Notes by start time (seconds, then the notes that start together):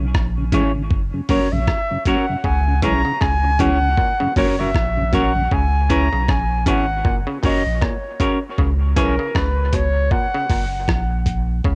0.00 B1
0.14 A#1, kick, cross-stick
0.38 C#3
0.52 G#1 E3 G#3 C#4 E4 G#4 C#5, kick, closed hi-hat
0.75 C#3
0.91 F#1, kick
1.14 F#2 C#3
1.29 F#1 F#3 A#3 C#4 F#4 A#4 C#5, kick, open hi-hat
1.52 A#1 F#2 C#3 E5
1.67 kick, cross-stick
1.91 F#2 C#3
2.06 F#3 A#3 C#4 F#4 A#4 C#5 F#5, kick, closed hi-hat
2.29 F#2 C#3
2.44 C#2 C#3 G#5, kick
2.68 C#3
2.82 B1 E3 G#3 C#4 E4 G#4 C#5 A#5, kick, closed hi-hat
3.05 C#3
3.21 C#2 C#3 G#5, kick, cross-stick
3.43 C#3, muted clean electric guitar stroke
3.59 C#2 B2 E3 G#3 C#4 E4 G#4 C#5 F#5, kick, closed hi-hat
3.82 C#3
3.98 A#2, kick
4.20 F#2 C#3
4.36 F#1 A#2 F#3 A#3 C#4 F#4 A#4 C#5, kick, open hi-hat
4.59 F#2 C#3 C#4 F#4 A#4 C#5 E5
4.75 A#1, kick, cross-stick
4.97 F#2 C#3
5.12 F#3 A#3 C#4 F#4 A#4 C#5 F#5, kick, closed hi-hat
5.35 F#2 C#3
5.51 C#2 C#3 G#5, kick
5.90 E3 C#4 E4 G#4 C#5 A#5, kick, closed hi-hat
6.13 B1 C#3
6.28 A#1 C#3 G#5, kick, cross-stick
6.66 G#1 B2 C#4 E4 G#4 C#5 F#5, kick, closed hi-hat
7.05 F#1 A#2, kick
7.27 C#3
7.43 F#1 A#2 C#4 F#4 A#4 C#5 D#5, kick, open hi-hat
7.66 A#1
7.81 A#2 C#5, kick, cross-stick
8.20 C#3 C#4 F#4 A#4 C#5, kick, closed hi-hat
8.58 C#2 C#3, kick
8.96 B1 E3 C#4 E4 G#4 C#5, kick, closed hi-hat
9.00 A#4
9.19 C#3
9.35 C#2 C#3 B4, kick, cross-stick
9.73 C#2 B2 C#5, kick, closed hi-hat
10.11 A#2 F#5, kick
10.34 C#3
10.50 F#1 A#2, kick, open hi-hat
10.88 A#1, kick, cross-stick
11.26 kick, closed hi-hat
11.64 C#2 C#3, kick